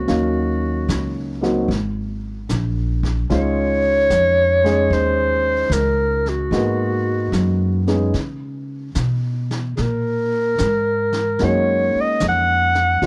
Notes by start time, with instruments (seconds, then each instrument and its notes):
Already playing: clarinet F#4
0.07 upright bass D#2, grand piano F#3 A#3 C#4 D#4 F5, brush sweep, snare
0.89 upright bass C#2, snare, hi-hat pedal
1.41 grand piano F#3 A#3 C4 D#4 F#4, snare
1.68 upright bass G#1, brush sweep, snare
2.49 upright bass A#1, snare, hi-hat pedal
3.03 kick, snare
3.30 upright bass C#2, grand piano G#3 C#4 D#4 F4, clarinet C#5, brush sweep, snare
4.10 upright bass F2, snare, hi-hat pedal
4.64 grand piano G#3 C#4 D#4 G#4, snare
4.90 upright bass D#2, clarinet C5, brush sweep, snare
5.70 upright bass C#2, clarinet A#4, snare, hi-hat pedal
6.26 clarinet F#4, snare
6.51 upright bass G#2, grand piano G#3 A#3 B3 D#4 F#4, brush sweep, snare
7.32 upright bass F#2, snare, hi-hat pedal
7.87 grand piano G#3 B3 C#4 D#4 G#4, snare
8.14 upright bass C#3, brush sweep, snare
8.95 upright bass B2, snare, hi-hat pedal
9.51 snare
9.77 upright bass A#2, clarinet G#4, brush sweep, snare
9.82 clarinet A#4
10.58 upright bass G#2, snare, hi-hat pedal
11.12 snare
11.39 upright bass F#2, grand piano G#3 A#3 C#4 D#4 F#4, brush sweep, snare
11.44 clarinet C#5
11.95 muted upright bass stroke
12.01 clarinet D#5
12.20 upright bass F2, snare, hi-hat pedal
12.29 clarinet F#5
12.75 snare
13.02 upright bass D#2, grand piano F#3 A#3 C#4 D#4 F4, brush sweep, snare